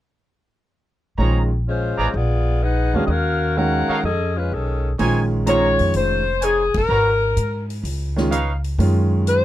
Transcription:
1.18 A#1 D#3 G#3 C#4 F4 G#4 C5 C#5 A#5
1.69 G#3 C#4 F4 C5
1.98 A1 G#4 B4 D5 A#5
2.14 A#1 B3 F4 G#4 D5
2.62 D#4 G#4 B4 F#5
2.94 E2 D#3 G#3 C#4 D4 F#4 G#4 B4 F5
3.05 D#2 F#4 D#5 F5
3.10 C#4 A#4
3.57 D#3 G#3 C#4 F#4 A#4 F5 F#5
3.88 D#4 A4 C#5 F5, muted upright bass stroke
4.04 F2 C#4 G#4 A4 D#5
4.37 G#3 C#4 F4 B4
4.52 B1 D#3 C#4 G#4 A4
4.99 A#1 D#3 G#3 C#4 D#4 F4 C5 C#5 G#5, open hi-hat
5.46 D#3 G#3 C#4 D#4 F4 C5 C#5 A#5, closed hi-hat
5.79 F2, open hi-hat
5.94 F1 C5, open hi-hat
6.41 D#4 G#4 C5 C#5 G#5, closed hi-hat
6.74 F#1 A#4, kick, ride
6.89 G#1 F#4 B4 C#5 A#5
7.37 G#2, closed hi-hat
7.70 open hi-hat
7.83 C#2, open hi-hat
8.16 D#3 G#3 C#4 F4, snare
8.31 D#4 B4 C#5 F5, closed hi-hat
8.64 open hi-hat
8.78 F#2 D#3 G#3 C#4 F4, open hi-hat
9.27 C5, closed hi-hat

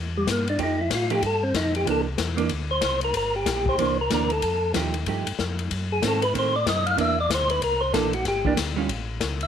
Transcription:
Already playing: E2
0.17 G3
0.27 G2 A#3, kick, snare, hi-hat pedal, ride
0.48 D4, ride
0.59 F2 F3 A3 D#4 G4, kick, ride
0.63 D#4
0.81 E4
0.90 A2, kick, snare, hi-hat pedal, ride
0.95 F4
1.10 F3 A3 D#4 G4, ride
1.22 G2, kick, ride
1.26 A4
1.43 C4
1.54 F2 D#4, kick, snare, hi-hat pedal, ride
1.75 G4, ride
1.86 C2 E3 A#3 D4, kick, ride
1.90 A4
2.17 E2, kick, snare, hi-hat pedal, ride
2.37 E3 A#3 D4, ride
2.49 D2, kick, ride
2.71 C5
2.81 C2, kick, snare, hi-hat pedal, ride
3.01 A#4, ride
3.14 G1 A#4, kick, ride
3.36 G4
3.46 A#1, kick, snare, hi-hat pedal, ride
3.66 C5, kick
3.78 C2 E3 A#3 D4, kick, ride
4.01 A#4
4.10 D2 E3 A#3 D4, kick, snare, hi-hat pedal, ride
4.14 A#4
4.30 A4, ride
4.42 F2, kick, ride
4.74 D#2 F3 A3 D#4 G4, kick, snare, hi-hat pedal, ride
4.94 ride
5.06 G2 F3 A3 D#4 G4, kick, ride
5.27 G2, ride
5.39 F2, kick, snare, hi-hat pedal
5.59 ride
5.71 F#2, kick, ride
5.92 G#4
6.02 G#2 D#3 A3 C4, kick, snare, hi-hat pedal, ride
6.07 A4
6.22 B4, ride
6.34 A2 D#3 A3 C4, kick, ride
6.39 C5
6.56 D5
6.66 F#2 D#5, kick, snare, hi-hat pedal, ride
6.86 F5, ride
6.97 E2 E3 A#3 D4 E5, kick, ride
7.20 D5
7.30 D2, kick, snare, hi-hat pedal, ride
7.34 C5
7.50 B4, ride
7.61 C2 A#4, kick, ride
7.81 C5
7.93 A#1 E3 A#3 D4 A4, kick, snare, hi-hat pedal, ride
8.13 F#4, ride
8.25 G1 G4, kick, snare, ride
8.45 E3 A#3 D4 G4, kick
8.57 D2, kick, snare, hi-hat pedal, ride
8.76 G3 C#4 F4
8.89 A1, kick, ride
9.21 C#2, kick, snare, hi-hat pedal, ride
9.41 E5, ride

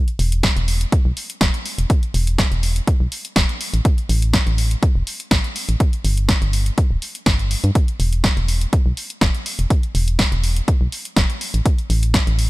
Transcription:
0.08 closed hi-hat
0.19 E1, open hi-hat
0.32 closed hi-hat
0.43 kick, snare, closed hi-hat
0.56 E1, closed hi-hat
0.68 open hi-hat
0.81 closed hi-hat
0.92 kick, closed hi-hat
1.05 B1
1.17 open hi-hat
1.30 closed hi-hat
1.41 E1, kick, snare, closed hi-hat
1.54 closed hi-hat
1.66 open hi-hat
1.78 E1, closed hi-hat
1.90 kick, closed hi-hat
2.03 closed hi-hat
2.14 E1, open hi-hat
2.27 closed hi-hat
2.38 kick, snare, closed hi-hat
2.52 E1, closed hi-hat
2.63 open hi-hat
2.76 closed hi-hat
2.87 kick, closed hi-hat
3.00 B1
3.12 open hi-hat
3.25 closed hi-hat
3.36 E1, kick, snare, closed hi-hat
3.49 closed hi-hat
3.61 open hi-hat
3.74 A1, closed hi-hat
3.85 kick, closed hi-hat
3.98 closed hi-hat
4.09 A1, open hi-hat
4.22 closed hi-hat
4.33 kick, snare, closed hi-hat
4.47 A1, closed hi-hat
4.58 open hi-hat
4.71 closed hi-hat
4.83 kick, closed hi-hat
4.95 E1
5.07 open hi-hat
5.20 closed hi-hat
5.31 A1, kick, snare, closed hi-hat
5.44 closed hi-hat
5.56 open hi-hat
5.69 A1, closed hi-hat
5.80 kick, closed hi-hat
5.93 closed hi-hat
6.05 G1, open hi-hat
6.17 closed hi-hat
6.29 kick, snare, closed hi-hat
6.42 G1, closed hi-hat
6.53 open hi-hat
6.66 closed hi-hat
6.78 kick, closed hi-hat
6.91 D1
7.02 open hi-hat
7.15 closed hi-hat
7.26 G1, kick, snare, closed hi-hat
7.39 closed hi-hat
7.51 open hi-hat
7.64 G2, closed hi-hat
7.75 kick, closed hi-hat
7.88 closed hi-hat
8.00 E1, open hi-hat
8.13 closed hi-hat
8.24 kick, snare, closed hi-hat
8.37 E1, closed hi-hat
8.48 open hi-hat
8.61 closed hi-hat
8.73 kick, closed hi-hat
8.86 B1
8.97 open hi-hat
9.10 closed hi-hat
9.21 E1, kick, snare, closed hi-hat
9.35 closed hi-hat
9.46 open hi-hat
9.59 E1, closed hi-hat
9.70 kick, closed hi-hat
9.83 closed hi-hat
9.95 E1, open hi-hat
10.08 closed hi-hat
10.19 kick, snare, closed hi-hat
10.32 E1, closed hi-hat
10.44 open hi-hat
10.56 closed hi-hat
10.68 kick, closed hi-hat
10.81 B1
10.92 open hi-hat
11.05 closed hi-hat
11.16 E1, kick, snare, closed hi-hat
11.30 closed hi-hat
11.41 open hi-hat
11.54 A1, closed hi-hat
11.66 kick, closed hi-hat
11.78 closed hi-hat
11.90 A1, open hi-hat
12.03 closed hi-hat
12.14 kick, snare, closed hi-hat
12.27 A1, closed hi-hat
12.39 open hi-hat

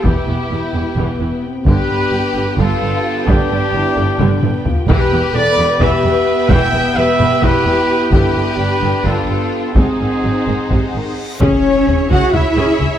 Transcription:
Already playing: B3 G4 B4 G5
0.04 E1 E2 E3 E4 G4, taiko
0.27 E1 E2 E3
0.49 E1 E2 G3 E4
0.74 E1 E2 E3
0.96 E1 E2 E3 B3, taiko
1.19 E1 E2 E3
1.44 C4
1.65 G1 G2 D3 B3 D4 G4 B4 G5, taiko
1.88 G1 G2 D3
2.13 G1 G2 G3 D4
2.35 G1 G2 D3
2.58 G1 G2 D3 F4 A4, taiko
2.82 G1 G2 D3
3.28 G1 G2 D3 D4 G4, taiko
3.51 G1 G2 D3
3.73 G1 G2 G3 E4
3.96 G1 G2 D3
4.19 G1 G2 D3 D4, taiko mid
4.41 G1 G2 D3, taiko low-mid
4.65 F4, taiko low
4.88 E1 E2 E3 B3 G4 B4 G5, taiko
5.11 E1 E2 E3
5.33 E1 E2 G3 A4 B4 D5
5.57 E1 E2 E3
5.80 E1 E2 E3 G4 B4 E5, taiko
6.04 E1 E2 E3
6.49 E1 E2 E3 B3 E5 G5, taiko
6.73 E1 E2 E3
6.96 E1 E2 G3 B4 E5
7.20 E1 E2 E3, taiko low-mid
7.42 E1 E2 E3 E4 G4 B4, taiko
7.65 E1 E2 E3
8.10 G1 G2 D3 B3 D4 G4 B4, taiko
8.35 G1 G2 D3
8.57 G1 G2 G3 D4
8.81 G1 G2 D3, taiko low-mid
9.04 G1 G2 D3 F4 A4, taiko
9.28 G1 G2 D3
9.73 G#1 G#2 C3 C4 D#4 G#4 C5 F#5, taiko, reverse cymbal
9.99 G#1 G#2 D#3
10.23 G#1 G#2 F#3
10.47 G#1 G#2 D#3, taiko low-mid
10.70 G#1 G#2 C3, taiko
10.94 G#1 G#2 D#3
11.39 C#2 C#4 E4 G#4 C#5 E5, taiko, impact
11.88 taiko low
12.10 C#2 C#4 F#4 G#4 F#5, taiko
12.32 C#2 E4 G#4 E5, taiko low
12.57 C#2 C#4 G#4
12.80 C#2 G#4 E5, taiko low

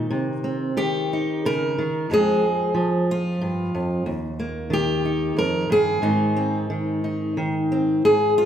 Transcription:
Already playing: D#3
0.10 C3
0.44 C4
0.77 D#3 G4
1.13 D#4
1.45 C#3 A#4
1.78 D#3
2.10 F2 F3 G#3 C4 G#4
2.74 F3
3.11 F4
3.41 G2
3.75 F2
4.06 D#2
4.40 A#3
4.70 D#3 G4
5.05 D#4
5.37 F2 A#4
5.70 G2 G#4
6.02 G#2 D#3 C4 D#4
6.37 C4
6.70 D#3
7.04 D#4
7.37 D#3
7.72 C4
8.05 G#2 G#4
8.38 F4

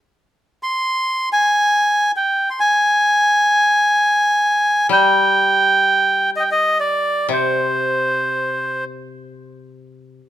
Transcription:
0.63 C6
1.33 G#5
2.16 G5
2.50 C6
2.60 G#5
4.89 G3 G5
6.36 D#5 G5
6.51 D#5
6.80 D5
7.29 C3
7.33 C5

